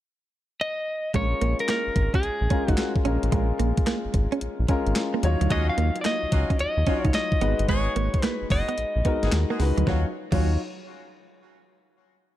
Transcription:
0.61 clean electric guitar D#5
1.14 analog synth bass A#1, grand piano G#3 C#4 F4 A#4, clean electric guitar G#3 C#5, kick, closed hi-hat
1.41 analog synth bass A#1, clean electric guitar A#3, closed hi-hat
1.59 clean electric guitar A#4, muted clean electric guitar stroke, closed hi-hat
1.68 clean electric guitar A#3 A#4, snare, clap, closed hi-hat
1.87 analog synth bass G#1
1.96 analog synth bass G#1, muted clean electric guitar stroke, kick, closed hi-hat
2.14 clean electric guitar C#4 G#4, kick, closed hi-hat
2.23 analog synth bass A#1, muted clean electric guitar stroke, closed hi-hat
2.41 analog synth bass A#1
2.50 grand piano G#3 C#4 F4 A#4, clean electric guitar C#4, kick, closed hi-hat
2.68 analog synth bass G#1, clean electric guitar D#4 F#4, kick, closed hi-hat
2.77 snare, clap, closed hi-hat
2.96 kick
3.05 analog synth bass A#1, grand piano G#3 C#4 F4 A#4, clean electric guitar C#4, closed hi-hat
3.23 analog synth bass A1, closed hi-hat
3.32 analog synth bass A#1, clean electric guitar G#3, grand piano G#3 C#4 F4 A#4, kick, closed hi-hat
3.59 analog synth bass A#1, clean electric guitar A#3, closed hi-hat
3.77 muted clean electric guitar stroke, kick, closed hi-hat
3.87 clean electric guitar A#3, snare, clap, closed hi-hat
4.05 analog synth bass G#1
4.14 analog synth bass G#1, muted clean electric guitar stroke, kick, closed hi-hat
4.32 clean electric guitar C#4, closed hi-hat
4.41 analog synth bass A#1, closed hi-hat
4.59 analog synth bass A#1
4.68 grand piano G#3 C#4 F4 A#4, clean electric guitar C#4, kick, closed hi-hat
4.87 analog synth bass G#1, closed hi-hat
4.96 snare, clap, closed hi-hat
5.14 clean electric guitar A#3
5.23 analog synth bass D#2, grand piano F#3 D#4 F4 C#5, muted clean electric guitar stroke, closed hi-hat
5.41 analog synth bass D2, clean electric guitar F#3, closed hi-hat
5.50 analog synth bass D#2, horn section F#3 C#4 F4 F#4, clean electric guitar G#3 D#5, kick, closed hi-hat
5.69 clean electric guitar F5
5.78 analog synth bass D#2, clean electric guitar A#3, closed hi-hat
5.96 muted clean electric guitar stroke, closed hi-hat
6.01 clean electric guitar A#3 D5, snare, clap, closed hi-hat
6.06 clean electric guitar D#5
6.23 analog synth bass C#2
6.32 analog synth bass C#2, horn section F#3 C#4 F4 F#4, muted clean electric guitar stroke, kick, closed hi-hat
6.50 clean electric guitar C#4, kick, closed hi-hat
6.59 analog synth bass D#2, clean electric guitar D#5, muted clean electric guitar stroke, closed hi-hat
6.77 analog synth bass D#2
6.86 grand piano F#3 D#4 F4 C#5, horn section F#3 C#4 F4 F#4, clean electric guitar C#4, kick, closed hi-hat
7.05 analog synth bass C#2, clean electric guitar D#4, kick, closed hi-hat
7.14 clean electric guitar D#5, snare, clap, closed hi-hat
7.32 kick
7.41 analog synth bass G#1, grand piano G#3 D#4 F#4 B4, clean electric guitar B3, closed hi-hat
7.59 analog synth bass G1, closed hi-hat
7.68 analog synth bass G#1, clean electric guitar G#3 C#5, horn section G#3 B3 F#4 G#4, kick, closed hi-hat
7.96 analog synth bass G#1, clean electric guitar A#3, closed hi-hat
8.14 muted clean electric guitar stroke, kick, closed hi-hat
8.23 clean electric guitar A#3 B4, snare, clap, closed hi-hat
8.42 analog synth bass F#1
8.50 analog synth bass F#1, horn section G#3 B3 F#4 G#4, clean electric guitar D#5, muted clean electric guitar stroke, kick, open hi-hat
8.69 clean electric guitar B3, closed hi-hat
8.78 analog synth bass A#1, closed hi-hat
8.96 analog synth bass A#1
9.05 grand piano G#3 D#4 F#4 A#4, clean electric guitar B3, kick, closed hi-hat
9.23 analog synth bass G#1, horn section G#3 B3 F#4 G#4, snare, closed hi-hat
9.32 analog synth bass D#2, snare, clap, closed hi-hat
9.50 horn section G#3 B3 F#4 G#4, clean electric guitar A#3
9.60 analog synth bass C#2, grand piano G#3 D#4 F#4 B4, muted clean electric guitar stroke, snare, open hi-hat
9.77 analog synth bass D2, clean electric guitar F#3, closed hi-hat
9.86 analog synth bass D#2, clean electric guitar F#3, horn section F#3 C#4 F4 F#4, grand piano F#3 D#4 F4 C#5, kick, snare
10.31 analog synth bass D#2, clean electric guitar F#3, horn section F#3 C#4 F4 F#4, grand piano F#3 D#4 F4 C#5, kick, crash

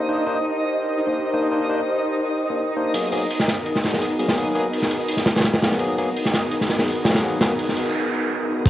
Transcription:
Already playing: synth texture D#4 D#6
0.09 tine electric piano A#3 D4 D#4 C5, analog synth pad D#4 G4 A#4 C5 D#5
0.27 tine electric piano A#3 D4 D#4 C5
1.07 tine electric piano A#3 D4 D#4 C5
1.34 tine electric piano A#3 D4 D#4 C5
1.52 tine electric piano A#3 D4 D#4 C5
1.69 tine electric piano A#3 D4 D#4 C5
2.50 tine electric piano A#3 D4 D#4 C5
2.77 tine electric piano A#3 D4 D#4 C5
2.94 tine electric piano F#3 A#3 B3 G#4, analog synth pad B3 D#4 F#4 G#4 A#4, open hi-hat
3.12 tine electric piano F#3 A#3 B3 G#4, open hi-hat
3.31 open hi-hat
3.40 snare
3.48 snare, open hi-hat
3.66 open hi-hat
3.75 snare
3.84 snare, open hi-hat
3.93 tine electric piano F#3 A#3 B3 G#4, snare
4.02 open hi-hat
4.19 tine electric piano F#3 A#3 B3 G#4, open hi-hat
4.28 snare
4.37 tine electric piano F#3 A#3 B3 G#4, open hi-hat
4.55 tine electric piano F#3 A#3 B3 G#4, open hi-hat
4.73 open hi-hat
4.82 snare
4.91 open hi-hat
5.09 open hi-hat
5.17 snare
5.26 snare, open hi-hat
5.36 tine electric piano F#3 A#3 B3 G#4, snare, open hi-hat
5.40 snare, open hi-hat
5.44 snare, open hi-hat
5.54 snare, open hi-hat
5.62 tine electric piano F#3 A#3 B3 G#4, snare, open hi-hat
5.72 snare
5.79 tine electric piano F#3 A#3 B3 G#4, analog synth pad B3 D#4 F#4 G#4 A#4, open hi-hat
5.98 tine electric piano F#3 A#3 B3 G#4, open hi-hat
6.16 open hi-hat
6.25 snare
6.34 snare, open hi-hat
6.51 open hi-hat
6.61 snare
6.69 snare, open hi-hat
6.79 tine electric piano F#3 A#3 B3 G#4, snare
6.88 open hi-hat
7.05 tine electric piano F#3 A#3 B3 G#4, snare, open hi-hat
7.10 snare, open hi-hat
7.14 snare, open hi-hat
7.23 tine electric piano F#3 A#3 B3 G#4, open hi-hat, noise sweep
7.41 tine electric piano F#3 A#3 B3 G#4, snare, open hi-hat
7.59 open hi-hat
7.69 snare
7.77 open hi-hat
8.66 808-style bass C2, tine electric piano A#3 D4 D#4 C5, kick, open hi-hat, crash

